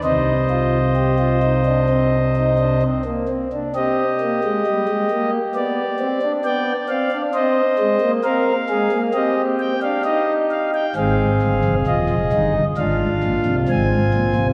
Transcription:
0.04 C2 C3 D#4 C5 D#5
0.50 F4
0.96 G4
1.19 F4
1.42 D#4
1.66 D4
1.89 C4
2.36 D#4
2.58 D4
2.82 C4
3.05 A#3
3.28 C4
3.52 D4
3.75 C4 G4 D#5
4.21 A#3
4.44 G#3
4.67 G3
4.89 G#3
5.11 A#3
5.55 B3 D5
6.00 C4
6.22 D4
6.44 B3 D5 G5
6.89 C4 F5
7.11 D4
7.34 C4 C5 D#5
7.79 G#3
8.01 A#3
8.24 C4 A#4 F5
8.69 G#3 G#4
8.92 A#3
9.14 C4 G4 D#5
9.60 G5
9.82 D4 F5
10.04 D#4 D#5
10.51 F5
10.74 G5
10.96 G#1 G#2 C4 G#4 F5
11.42 G1 G2
11.65 F1 F2
11.87 D#1 D#2 F4 D#5
12.09 F1 F2
12.32 G1 G2 D#4
12.77 G#1 G#2 D4 F4 F5
13.23 A#1 A#2
13.46 C2 C3
13.69 G#1 G#2 C4 G#5
14.13 A#1 A#2
14.36 C2 C3

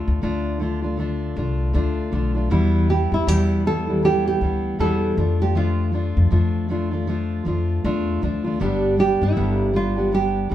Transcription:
Already playing: D3 A3 D4 F4
0.08 D2
0.21 D2 D3 A3 D4 F4
0.60 D3 A3 D4 F4
0.82 A3 D4 F4
0.97 D3 A3 D4 F4
1.36 C2 D3 A3 D4 F4
1.73 D2 D3 A3 D4 F4
2.12 B1 D3 A3 D4 F4
2.35 A3 D4 F4
2.50 E2 B2 E3 G3 B3 E4
2.88 E3 G3 B3 E4 G4
3.12 E2 E4
3.27 E2 B2 E3 G3 B3 E4 G4
3.65 E3 G3 B3 E4 A4
3.87 E3 G3 B3 E4
4.03 E3 G3 B3 E4 G4
4.27 G4
4.41 D2 E3 G3 B3 E4
4.79 E2 B2 E3 G3 B3 E4 A4
5.17 F2 F3 A3 D4 F4
5.40 A3 D4 F4 G4
5.55 F3 A3 D4 F4
5.92 F3 A3 D4 F4
6.17 F2
6.30 F2 F3 A3 D4 F4
6.69 F3 A3 D4 F4
6.91 A3 D4 F4
7.07 F3 A3 D4 F4
7.45 F2 F3 A3 D4 F4
7.84 E2 A3 D4 F4
8.22 D2 F3 A3 D4 F4
8.44 A3 D4 F4
8.60 G1 G2 D3 G3 B3 D4 G4
8.97 G3 B3 D4 G4
9.22 G1 E4
9.35 G1 G2 D3 G3 B3 D4 G4
9.73 G3 B3 D4 F4 G4
9.96 G3 B3 D4 G4
10.12 G3 B3 D4 G4
10.49 F1 G3 B3 D4

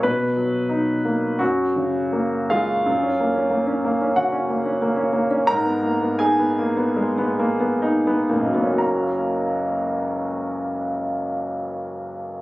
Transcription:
0.03 B2 B4
0.37 F#3
0.69 D#4
1.05 A#3
1.39 F#2 F#4
1.76 C#3
2.13 A#3
2.50 G#3 F4 F5
2.86 F#2
3.03 C#4
3.20 A#3
3.35 C#4
3.50 A#3
3.67 C#4
3.85 A#3
4.01 C#4
4.16 C#3 F#4 F#5
4.32 C#4
4.50 A#3
4.66 C#4
4.82 A#3
4.96 C#4
5.13 A#3
5.31 C#4
5.47 G#2 A#4 A#5
5.65 B3
5.83 A#3
6.01 B3
6.19 D#4 G#4 G#5
6.39 B3
6.59 A#3
6.77 B3
6.96 G#3
7.18 B3
7.40 A#3
7.60 B3
7.82 D#4
8.07 B3
8.30 F#1 A#3
8.39 C#2
8.47 F#3
8.54 A#3 B3
8.63 C#4
8.72 F#4
8.78 A#5

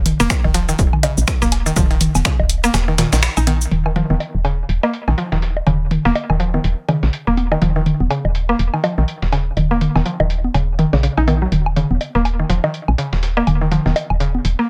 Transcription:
Already playing: D#1
0.06 closed hi-hat, mid tom
0.20 D#1 A#3, high conga, shaker
0.30 finger snap, kick, snare, closed hi-hat, high woodblock, shaker
0.44 D#1 D#3, high bongo
0.54 F3, closed hi-hat, shaker
0.69 D#3, shaker
0.79 D#1, kick, closed hi-hat, shaker
0.93 mid tom, high woodblock
1.03 C#3, closed hi-hat, high bongo
1.18 A#1, shaker
1.28 finger snap, kick, snare, closed hi-hat, shaker
1.42 D#1 A#3, snare, shaker
1.52 snare, closed hi-hat, high woodblock
1.66 D#3, shaker
1.76 D#1 F3, kick, closed hi-hat, mid tom, high bongo, shaker
1.91 D#3, closed hi-hat
2.01 closed hi-hat, mid tom, shaker
2.15 D#1, snare, high conga, high woodblock, shaker
2.25 C#3, finger snap, kick, snare, closed hi-hat, shaker
2.39 D#1, high bongo
2.49 closed hi-hat, shaker
2.64 A#3, high conga, shaker
2.74 D#1, snare, closed hi-hat, high woodblock, shaker
2.88 D#3
2.98 A#2, snare, closed hi-hat, mid tom, shaker
3.13 A#1 D#3, snare, closed hi-hat, high bongo, shaker
3.23 finger snap, snare, closed hi-hat, shaker
3.37 A#1 D#4, high woodblock, shaker
3.47 D#3, closed hi-hat, high conga
3.61 shaker
3.71 D#1, closed hi-hat, mid tom
3.86 D#3, high woodblock
3.96 F3, closed hi-hat, mid tom
4.10 D#1 D#3, high conga
4.20 closed hi-hat, high bongo
4.35 D#1
4.45 C#3, closed hi-hat, high woodblock
4.69 D#1, closed hi-hat
4.83 A#3, high bongo
4.93 closed hi-hat
5.08 A#1 D#3, high woodblock
5.18 F3, closed hi-hat
5.32 D#1 D#3, snare
5.42 snare, closed hi-hat
5.57 high bongo
5.67 D#1 C#3, closed hi-hat, mid tom, high woodblock
5.91 closed hi-hat, mid tom
6.05 D#1 A#3, snare, high conga
6.15 closed hi-hat, high bongo
6.30 D#1 D#3, high woodblock
6.40 F3, closed hi-hat
6.54 D#3, high conga
6.64 D#1, closed hi-hat
6.89 C#3, closed hi-hat, mid tom, high bongo, high woodblock
7.03 A#1, snare
7.13 closed hi-hat
7.27 D#1 A#3
7.37 closed hi-hat, high conga
7.52 D#3, high bongo, high woodblock
7.62 D#1 F3, closed hi-hat, mid tom
7.76 D#3
7.86 closed hi-hat, mid tom
8.00 D#1, high conga
8.10 C#3, closed hi-hat, high woodblock
8.25 D#1, high bongo
8.35 closed hi-hat
8.49 A#3
8.59 D#1, closed hi-hat
8.74 D#3, high woodblock
8.84 F3, closed hi-hat, high bongo
8.98 A#1 D#3
9.08 closed hi-hat
9.22 D#1, snare
9.32 C#3, snare, closed hi-hat, high woodblock
9.57 D#1, closed hi-hat, mid tom, high bongo
9.71 A#3
9.81 closed hi-hat, mid tom
9.95 D#1 D#3, snare, high conga, high woodblock
10.06 F3, closed hi-hat
10.20 D#1 D#3, high bongo
10.30 closed hi-hat
10.44 high conga
10.54 D#1 C#3, closed hi-hat, high woodblock
10.79 D#3, closed hi-hat, mid tom
10.93 A#1 C#3, snare, high bongo
11.03 C#3, closed hi-hat
11.17 A#1 D#4, high woodblock
11.28 D#3, closed hi-hat, high conga
11.42 F#3
11.52 D#1, closed hi-hat, mid tom
11.66 high woodblock
11.76 C#3, closed hi-hat, mid tom
11.91 D#1, high conga
12.01 closed hi-hat, high bongo
12.15 D#1 A#3
12.25 closed hi-hat, high woodblock
12.39 D#3
12.50 D#1 F3, closed hi-hat
12.64 D#3, high bongo
12.74 closed hi-hat
12.88 A#1, high woodblock
12.98 C#3, closed hi-hat
13.13 D#1, snare
13.23 snare, closed hi-hat
13.37 A#3, high bongo
13.47 D#1, closed hi-hat, mid tom, high woodblock
13.61 D#3
13.71 F3, closed hi-hat, mid tom
13.86 D#1 D#3, snare, high conga
13.96 closed hi-hat, high bongo
14.10 D#1, high woodblock
14.20 C#3, closed hi-hat
14.35 high conga
14.45 D#1, closed hi-hat
14.59 A#3

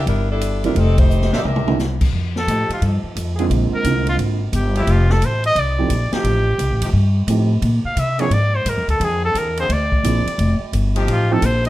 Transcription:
0.06 G1 G3 D4 E4 A#4, kick, ride
0.31 G3 D4 E4 A4
0.41 hi-hat pedal, ride
0.64 D#3 G3 A3 C4 D4 E4 F4 A#4, ride
0.75 F1 G3 C4 D#4 A4, kick, ride
0.98 A3 D#4 G4 C5, kick, ride
1.10 hi-hat pedal
1.22 snare
1.32 A#1 A#3 D4 D#4 G4 A#4 C5 D5 E5, snare
1.44 C2 D4 G4 A#4 E5, mid tom
1.56 mid tom
1.67 D3 G3 A#3 C4 E4, mid tom
1.79 snare, hi-hat pedal
2.01 kick, crash
2.13 F2, kick
2.36 A4, snare
2.46 A2 F3 A3 D#4 G4, kick, hi-hat pedal, ride
2.69 F4, muted upright bass stroke, ride
2.81 G2 F3 A3 D#4 A4, kick, ride
3.03 muted upright bass stroke
3.15 F2, kick, hi-hat pedal, ride
3.36 D3 G#3 A#3 C4 G#4, ride
3.40 C4 F4
3.50 A#1, kick, ride
3.72 A#4, muted upright bass stroke
3.84 C2 D3 G#3 A#3 C4 F4, kick, hi-hat pedal, ride
4.07 F4, ride
4.18 G#1, kick, ride
4.52 G1 G4, kick, hi-hat pedal, ride
4.75 F3 A3 D#4 E4 G4, ride
4.87 F1, kick, ride
4.91 F4
5.10 A4, snare
5.21 A1, kick, hi-hat pedal, ride
5.25 C5
5.44 D#5, ride
5.55 C2, kick, ride
5.59 D5
5.78 F3 A3 C4 D#4 G4
5.89 A#1, kick, hi-hat pedal, ride
6.12 F3 A3 D#4 G4, muted upright bass stroke, snare, ride
6.24 A1, kick, ride
6.58 C2, kick, hi-hat pedal, ride
6.70 A1
6.82 F1 F3 A3 D#4 G4, ride
6.93 G2, kick
7.27 A2 F3 A3 C4 D#4 G4, kick, hi-hat pedal, ride
7.62 A#2, kick, ride
7.84 F5, muted upright bass stroke
7.96 C3 E5, kick, hi-hat pedal, ride
8.18 D3 F3 A#3 C4 D4 G#4 C#5, ride
8.30 G#2 D5, kick, ride
8.55 C5
8.65 G#2 A#4, kick, hi-hat pedal, ride
8.76 F2
8.88 D2 A4, ride
9.00 F2 D3 A#3 C4 G#4, kick, ride
9.04 G#4
9.25 A4
9.34 E2 A#4, kick, hi-hat pedal, ride
9.57 D3 A#3 C4 G#4 C5, ride
9.69 D2 D5, kick, ride
9.92 kick
10.04 A#1 F3 A#3 C4 D4 G#4, kick, hi-hat pedal, ride
10.26 muted upright bass stroke, ride
10.38 F1, kick, ride
10.60 muted upright bass stroke
10.73 G1, kick, hi-hat pedal, ride
10.96 F3 A3 D#4 G4, ride
11.07 A1, kick, ride
11.12 F4
11.31 F3 A3 C4 D#4 G4 A4
11.42 A#1 C5, kick, hi-hat pedal, ride
11.65 F3 A3 D#4 G4, ride

